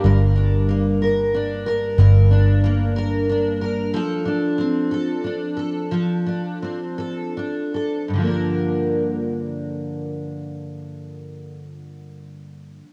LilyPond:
<<
  \new Staff \with { instrumentName = "Steel-string acoustic guitar" } { \time 6/8 \key g \minor \tempo 4. = 58 <g, bes'>8 d'8 bes8 bes'8 d'8 bes'8 | <g, bes'>8 d'8 bes8 bes'8 d'8 bes'8 | <f a'>8 d'8 c'8 a'8 d'8 a'8 | <f a'>8 d'8 c'8 a'8 d'8 a'8 |
<g, d f bes d' bes'>2.~ | <g, d f bes d' bes'>2. | }
  \new Staff \with { instrumentName = "Fingered electric bass" } { \clef bass \time 6/8 \key g \minor g,,2. | g,,2. | r2. | r2. |
r2. | r2. | }
>>